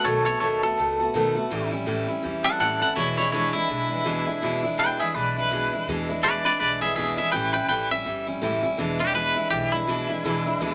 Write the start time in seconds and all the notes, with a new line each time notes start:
0.04 B1 B2 D#3 A3 B3 F#4 A4 C#5
0.25 A3 B3 F#4 A4 C#5
0.40 D#2 B2 D#3 A3 B3 F#4 A4 C#5
0.63 A3 B3 F#4 A4
0.78 C#2 D#3 A3 B3 F#4
0.99 A3 B3 F#4
1.14 B1 B2 D#3 A3 B3 F#4
1.35 A3 B3 F#4
1.50 A1 A2 E3 G3 C#4 E4
1.71 G3 C#4 E4
1.86 A2 E3 G3 C#4 E4
2.07 G3 C#4 E4
2.22 E2 E3 G3 C#4 E4
2.44 G3 C#4 E4 A4 F#5
2.60 A2 E3 G3 C#4 E4 A4 F#5
2.81 G3 C#4 E4 A4 F#5
2.95 E1 E2 B2 E3 G#3 D4 E4 C#5
3.17 E3 G#3 D4 E4 C#5
3.32 E2 B2 E3 G#3 D4 E4 C#5
3.53 E3 G#3 D4 E4
3.68 B1 E3 G#3 D4 E4
3.89 E3 G#3 D4 E4
4.05 E2 B2 E3 G#3 D4 E4
4.26 E3 G#3 D4 E4
4.41 E1 E2 B2 E3 G#3 D4 E4
4.63 E3 G#3 D4 E4
4.77 E2 B2 E3 G#3 D4 E4 B4 G5
4.99 E3 G#3 D4 E4 G#4 E5
5.14 B1 E3 G#3 D4 E4 B4 D5
5.36 E3 G#3 D4 E4 B4
5.51 E2 B2 E3 G#3 D4 E4
5.73 E3 G#3 D4 E4
5.87 E2 B2 E3 G#3 D4 E4
6.09 E3 G#3 D4 E4
6.23 E2 B2 E3 G#3 D4 E4 B4 D5
6.44 E3 G#3 D4 E4 B4 D5
6.59 B1 E3 G#3 D4 E4 B4 D5
6.81 E3 G#3 D4 E4 G#4 E5
6.96 E2 B2 E3 G#3 D4 E4 G#4 E5
7.17 E3 G#3 D4 E4 G#4 E5
7.32 A1 A2 E3 G3 C#4 E4 B4 G5
7.53 G3 C#4 E4 B4 G5
7.68 A1 A2 E3 G3 C#4 E4 B4 G5
7.90 G3 C#4 E4 E5
8.04 G1 E3 G3 C#4 E4
8.27 G3 C#4 E4
8.42 F#1 A2 E3 G3 C#4 E4
8.63 G3 C#4 E4
8.77 E1 E2 B2 E3 G#3 D4 E4
8.99 E3 G#3 D4 E4 G4
9.14 E2 B2 E3 G#3 D4 E4 B4
9.36 E3 G#3 D4 E4
9.50 B1 E3 G#3 D4 E4 G4
9.72 E3 G#3 D4 E4
9.88 E2 B2 E3 G#3 D4 E4
10.09 E3 G#3 D4 E4
10.24 E1 E2 B2 E3 G#3 D4 E4
10.46 E3 G#3 D4 E4
10.59 D2 E2 B2 E3 G#3 D4 E4